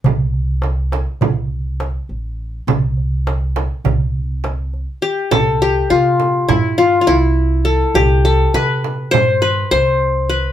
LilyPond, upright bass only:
\new Staff \with { instrumentName = "Upright bass" } { \clef bass \time 9/8 \tempo 4. = 68 c,2 c,4. a,,4 | c,2 c,2 r8 | c,4 c4 g,4 c,4. | c,4 c4 g,4 c,4. | }